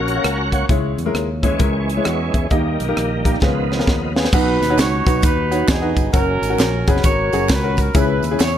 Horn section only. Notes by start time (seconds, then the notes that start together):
4.19 G#4
4.33 D#4 F#4 B4
4.79 F#4 C#5
5.23 D#4 F#4 B4
5.69 B3 D#4 G#4
6.13 C#4 F#4 A#4
6.61 A#4
6.88 B4
7.05 F#4 A#4 C#5
7.51 B4
7.81 A#4
7.97 E4 G#4 B4
8.25 B4
8.42 E4 G#4 C#5